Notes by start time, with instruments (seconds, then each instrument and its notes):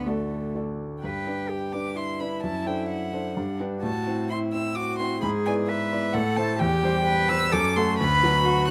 Already playing: grand piano D2 D3
0.06 cello A3, grand piano F#4 A4 D5, violin A4
0.55 grand piano F#4 A4 D5
1.03 grand piano G2, cello B4, violin G5
1.27 grand piano D4 B4 D5
1.50 cello G4
1.73 grand piano D4 B4 D5, violin D6
1.96 cello E4, violin C6
2.20 grand piano D4 B4 D5, violin B5
2.43 grand piano F#2, violin A5
2.66 grand piano D4 A4 C5, violin G5
2.89 violin F#5
3.13 grand piano D4 A4 C5
3.36 grand piano G2, cello D4
3.60 grand piano D4 G4 B4
3.82 grand piano A2, cello F#4, violin A5
4.07 grand piano C4 E4 C5
4.30 cello E4, violin C6
4.53 grand piano C4 E4 C5, violin E6
4.75 cello F#4, violin D6
4.99 grand piano C4 E4 C5, violin C6
5.21 grand piano G#2, cello G#4, violin B5
5.46 grand piano B3 E4 D5, violin G#5
5.68 cello B4, violin E5
5.92 grand piano B3 E4 D5
6.14 grand piano A2, cello A4, violin F#5
6.37 grand piano A3 E4 C5, violin A5
6.59 grand piano E2, cello G4, violin G5
6.83 grand piano G3 G4 C5
7.06 cello B4
7.29 grand piano G3 G4 C5, violin E6
7.52 grand piano F#2, cello A4, violin D6
7.76 grand piano A3 F#4 A4, violin C6
7.98 grand piano D2, cello B4, violin B5
8.23 grand piano F#3 F#4 B4
8.45 cello F#4